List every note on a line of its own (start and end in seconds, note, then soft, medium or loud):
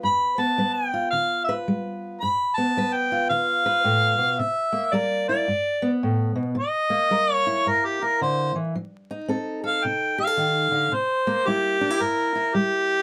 0.00 0.54 G2 medium
0.00 0.37 B3 medium
0.00 0.59 B4 medium
0.05 0.41 B5 loud
0.38 2.19 B3 medium
0.38 0.75 A5 medium
0.58 1.09 G3 medium
0.58 1.47 B4 medium
0.74 1.10 G5 medium
0.94 2.20 F4 medium
1.11 1.63 D3 medium
1.11 1.43 F5 medium
1.44 1.54 E5 medium
1.49 2.20 B4 medium
1.68 2.18 G3 medium
2.21 2.72 G2 medium
2.21 2.58 B5 loud
2.56 4.37 B3 medium
2.56 2.95 A5 medium
2.77 3.27 G3 medium
2.77 3.64 B4 medium
2.94 3.29 G5 medium
3.12 4.37 F4 medium
3.30 3.80 D3 medium
3.30 4.41 F5 loud
3.66 4.37 B4 medium
3.84 4.17 A2 medium
4.18 4.38 B2 medium
4.39 4.89 C3 medium
4.39 4.97 E5 loud
4.72 5.47 A#3 medium
4.93 5.43 G3 medium
4.93 5.45 A#4 medium
4.93 5.28 D5 medium
5.29 5.46 E4 medium
5.29 5.98 D5 medium
5.48 5.98 G2 medium
5.82 6.54 B3 medium
6.03 6.35 A2 medium
6.36 6.56 B2 medium
6.55 7.06 C3 medium
6.60 7.34 D#5 loud
6.90 8.73 A#3 medium
7.11 7.61 G3 medium
7.11 8.71 A#4 medium
7.34 7.70 C#5 loud
7.47 8.00 E4 medium
7.66 8.16 G2 medium
7.66 7.87 A#4 medium
7.85 8.05 G4 medium
8.02 8.73 E4 medium
8.02 8.20 A#4 medium
8.21 8.54 D3 medium
8.21 8.54 C5 medium
8.55 8.75 E3 medium
8.75 9.25 F3 medium
9.11 10.90 D#4 medium
9.28 9.78 C4 medium
9.28 9.62 A4 medium
9.64 10.17 A4 medium
9.64 9.86 F5 medium
9.85 10.34 C3 medium
9.85 10.17 G5 medium
10.18 10.27 G4 medium
10.18 10.95 F5 medium
10.27 10.91 A4 medium
10.37 10.71 D#3 medium
10.71 10.91 D3 medium
10.92 11.42 C3 medium
10.92 11.49 C5 loud
11.27 13.02 A#3 medium
11.47 11.97 G3 medium
11.47 11.81 E4 medium
11.47 12.03 G4 medium
11.81 11.90 D4 medium
11.90 12.34 E4 medium
12.00 12.51 G2 medium
12.00 12.56 A#4 medium
12.35 13.02 E4 medium
12.54 13.02 G3 medium
12.54 13.02 G4 loud